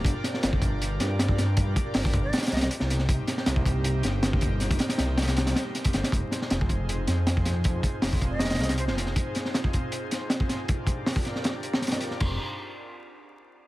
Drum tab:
CC |--------------------------------|--------------------------------|--------------------------------|--------------------------------|
HH |x---x---x---x---x---x---x---x---|x---x---o---x---xxxxxxx-x---x---|x---x---x---x---x---x---x---x---|x-x-x-x-x---xxx-x-x-x---x-x-x-x-|
SD |----o-o-o-----------o---o---o---|--------o-------ooooooo---o-o-o-|----o-o-o-----------o---o-------|o---o-o-o---ooo-o-o-o---o---o-o-|
BD |o---------o-o-------------o-----|o---o-----o-o-------------------|o---------o-o-------------o-o---|--o-----------------------o-----|

CC |--------------------------------|--------------------------------|--------------------------------|--------------------------------|
HH |x---x---x---x---x---x---x---x---|x---x---o---x---xxxxxxx-x---x---|x---x---x---x---x---x---x---x---|x---x---o---x---x---x---xxx-x---|
SD |----o-o-o-----------o---o---o---|--------o-------ooooooo---o-o-o-|----o-o-o-----------o---o---o---|--------o---o-o-o-----o-ooo-o-o-|
BD |o---------o-o-------------o-----|o---o-----o-o-------------------|o---------o-o-------------o-----|o---o-----o---------------------|

CC |x-------------------------------|
HH |--------------------------------|
SD |--------------------------------|
BD |o-------------------------------|